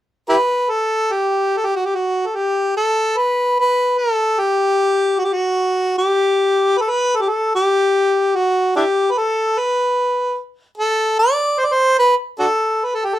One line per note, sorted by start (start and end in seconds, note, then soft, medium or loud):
0.29 0.36 E4 medium
0.29 0.37 G4 medium
0.29 0.72 B4 medium
0.71 1.14 A4 medium
1.13 1.59 G4 medium
1.57 1.68 A4 medium
1.66 1.77 G4 medium
1.76 1.87 F#4 medium
1.85 1.97 G4 medium
1.95 2.28 F#4 medium
2.27 2.37 A4 soft
2.36 2.75 G4 medium
2.77 3.19 A4 medium
3.18 3.56 B4 medium
3.60 4.00 B4 medium
3.99 4.42 A4 medium
4.40 5.21 G4 medium
5.19 5.26 F#4 medium
5.25 5.35 G4 medium
5.34 5.96 F#4 medium
5.98 6.79 G4 medium
6.78 6.92 A4 medium
6.78 6.83 B4 medium
6.90 7.17 B4 medium
7.16 7.23 A4 medium
7.22 7.30 G4 medium
7.29 7.53 A4 medium
7.55 8.37 G4 medium
8.36 8.74 F#4 medium
8.76 8.83 D4 soft
8.76 8.84 E4 soft
8.76 9.13 G4 medium
9.11 9.20 B4 medium
9.18 9.60 A4 medium
9.59 10.37 B4 medium
10.78 11.14 A4 medium
11.19 11.61 D5 medium
11.59 11.67 C5 medium
11.65 11.74 D5 medium
11.73 11.98 C5 medium
11.99 12.15 B4 medium
12.39 12.48 D4 soft
12.39 12.45 F#4 soft
12.39 12.86 A4 medium
12.85 12.96 B4 medium
12.95 13.07 A4 medium
13.05 13.16 G4 medium
13.15 13.19 A4 medium